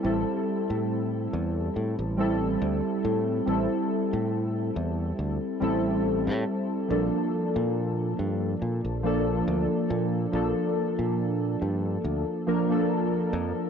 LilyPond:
<<
  \new Staff \with { instrumentName = "Synth keys" } { \time 4/4 \key a \phrygian \tempo 4 = 70 <g c' e' a'>2~ <g c' e' a'>8 <g c' e' a'>4. | <g c' e' a'>2~ <g c' e' a'>8 <g c' e' a'>4. | <f bes d' a'>2~ <f bes d' a'>8 <f bes d' a'>4. | <f bes d' a'>2~ <f bes d' a'>8 <f bes d' bes'>16 <f bes d' a'>4~ <f bes d' a'>16 | }
  \new Staff \with { instrumentName = "Fingered electric bass" } { \clef bass \time 4/4 \key a \phrygian a,,16 r8 a,8. e,8 a,16 a,,8. d,16 r16 a,8 | a,,16 r8 a,8. e,8 d,16 r16 a,,8. a,16 r8 | bes,,16 r8 bes,8. g,8 bes,16 bes,,8. d,16 r16 bes,8 | bes,,16 r8 bes,8. g,8 d,16 r4 r16 f,16 r16 | }
>>